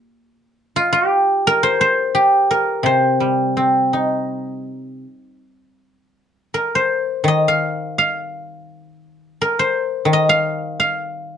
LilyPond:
<<
  \new Staff \with { instrumentName = "Guzheng" } { \time 4/4 \tempo 4 = 84 r4 f'16 g'8. bes'16 c''16 c''8 g'8 bes'8 | c''2 r2 | r4 bes'16 c''8. ees''16 f''8. f''4 | r4 bes'16 c''8. ees''16 f''8. f''4 | }
  \new Staff \with { instrumentName = "Guzheng" } { \clef bass \time 4/4 r1 | c8 g8 c'8 ees'2 r8 | r2 ees2~ | ees4 r4 ees2 | }
>>